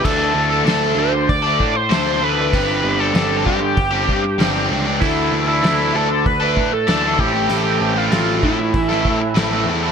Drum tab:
CC |x---------------|----------------|----------------|----------------|
HH |----o---o---o---|o---o---o---o---|o---o---o---o---|o---o---o---o---|
SD |----o-------o---|----o-------o---|----o-------o---|----o----o--o---|
BD |o-------o-o-----|o-----o-o-o-----|o-------o-o---o-|------o-o-o-----|